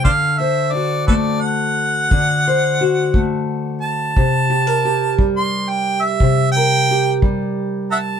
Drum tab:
BD |o--o--o--o--|o--o--o--o--|